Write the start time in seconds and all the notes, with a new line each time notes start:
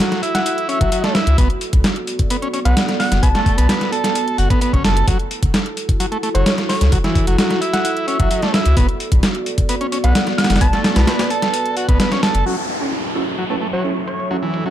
Already playing: E4 F#4 A4
0.00 F#3, snare, closed hi-hat
0.12 snare, closed hi-hat
0.23 E4, closed hi-hat
0.35 F#5, snare, closed hi-hat
0.46 F#5, closed hi-hat
0.58 closed hi-hat
0.69 C#4 E5, closed hi-hat
0.81 F#1 F#3, kick, closed hi-hat
0.92 F#3, closed hi-hat
1.04 A3, snare, closed hi-hat
1.15 E4, snare, closed hi-hat
1.27 C#2, closed hi-hat
1.38 B1 B3 A4 D5, kick, closed hi-hat
1.50 closed hi-hat
1.61 closed hi-hat
1.73 B1, kick, closed hi-hat
1.84 snare, closed hi-hat
1.96 closed hi-hat
2.07 closed hi-hat
2.19 kick, closed hi-hat
2.30 B3, closed hi-hat
2.42 C#4, closed hi-hat
2.54 C#4, closed hi-hat
2.65 B1 B3 F#5, closed hi-hat
2.77 snare, closed hi-hat
2.89 snare, closed hi-hat
3.00 F#5, snare, open hi-hat
3.12 F#1, snare, closed hi-hat
3.23 B1 B3 A5, kick, closed hi-hat
3.35 A3, snare, closed hi-hat
3.46 kick, closed hi-hat
3.58 B1 B3, closed hi-hat
3.69 B3, snare, closed hi-hat
3.81 snare, closed hi-hat
3.92 A4, closed hi-hat
4.04 snare, closed hi-hat
4.15 closed hi-hat
4.28 closed hi-hat
4.38 F#1 F#4, closed hi-hat
4.50 B3, kick, closed hi-hat
4.61 B3, closed hi-hat
4.73 F#1 C#4, kick, closed hi-hat
4.84 A4, snare, closed hi-hat
4.97 closed hi-hat
5.08 F#1 F#3 E4 F#4, kick, closed hi-hat
5.19 closed hi-hat
5.31 closed hi-hat
5.43 F#1, kick, closed hi-hat
5.54 snare, closed hi-hat
5.66 closed hi-hat
5.77 closed hi-hat
5.89 kick, closed hi-hat
6.00 F#3, closed hi-hat
6.12 A3, closed hi-hat
6.23 A3, closed hi-hat
6.35 F#1 F#3 C#5, closed hi-hat
6.46 snare, closed hi-hat
6.58 snare, closed hi-hat
6.69 C#5, snare, open hi-hat
6.81 C#2, snare, closed hi-hat
6.92 F#1 F#3, kick, closed hi-hat
7.04 E3, snare, closed hi-hat
7.15 kick, closed hi-hat
7.27 F#1 F#3, closed hi-hat
7.38 F#3, snare, closed hi-hat
7.50 snare, closed hi-hat
7.61 E4, closed hi-hat
7.73 F#5, snare, closed hi-hat
7.84 F#5, closed hi-hat
7.97 closed hi-hat
8.07 C#4 E5, closed hi-hat
8.20 F#1 F#3, kick, closed hi-hat
8.31 F#3, closed hi-hat
8.42 A3, snare, closed hi-hat
8.54 E4, snare, closed hi-hat
8.66 C#2, closed hi-hat
8.77 B1 B3 D5, kick, closed hi-hat
8.89 closed hi-hat
9.00 closed hi-hat
9.12 B1, kick, closed hi-hat
9.23 snare, closed hi-hat
9.35 closed hi-hat
9.46 closed hi-hat
9.58 kick, closed hi-hat
9.69 B3, closed hi-hat
9.81 C#4, closed hi-hat
9.92 C#4, closed hi-hat
10.04 B1 B3 F#5, closed hi-hat
10.15 snare, closed hi-hat
10.27 snare, closed hi-hat
10.38 F#5, snare, closed hi-hat
10.44 snare, closed hi-hat
10.50 F#1, snare, closed hi-hat
10.56 snare, closed hi-hat
10.61 B1 B3 B4 A5, kick, closed hi-hat
10.73 A3, snare, closed hi-hat
10.84 snare, closed hi-hat
10.96 B1 B3, snare, closed hi-hat
11.07 B3, snare, closed hi-hat
11.19 snare, closed hi-hat
11.30 A4, closed hi-hat
11.42 snare, closed hi-hat
11.54 closed hi-hat
11.66 closed hi-hat
11.77 F#4, closed hi-hat
11.89 B1 B3, kick, closed hi-hat
12.00 B3, snare, closed hi-hat
12.12 C#4, snare, closed hi-hat
12.23 A4, snare, closed hi-hat
12.35 F#1, closed hi-hat
12.46 F#3 C#4 E4 F#4 A4 E5, downlifter
12.81 C#4 E4 F#4 A4
13.15 C#4 E4 F#4 A4, closed hi-hat
13.38 F#3
13.50 A3 C#4 E4 F#4 B4
13.61 A3, closed hi-hat
13.73 F#3 C#5, closed hi-hat
13.84 C#4 E4 F#4 A4, closed hi-hat
13.97 closed hi-hat
14.07 C#5, closed hi-hat
14.20 closed hi-hat
14.31 F#3 C#4 E4 F#4 A4, closed hi-hat
14.42 E3, closed hi-hat
14.54 closed hi-hat
14.66 F#3 C#4 E4 F#4 A4, closed hi-hat